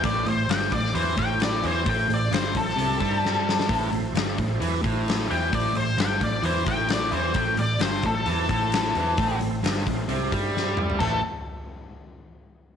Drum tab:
CC |----------------|----------------|----------------|----------------|
HH |o-o-o-o-o-o-o-o-|o-o-o-o-o-o-----|o-o-o-o-o-o-o-o-|o-o-o-o-o-o-o-o-|
SD |----o--o----o---|----o--o----o-oo|----o-------o---|----o-------o---|
T2 |----------------|----------------|----------------|----------------|
FT |----------------|----------------|----------------|----------------|
BD |o-----o---o-----|o-----o---o-----|o-----o---o-----|o-----o---o-----|

CC |----------------|----------------|x---------------|
HH |o-o-o-o-o-o-o-o-|o-o-o-o-o-o-----|----------------|
SD |----o-------o---|----o-------o---|----------------|
T2 |----------------|--------------o-|----------------|
FT |----------------|---------------o|o---------------|
BD |o-----o---o-----|o-----o---o-----|o---------------|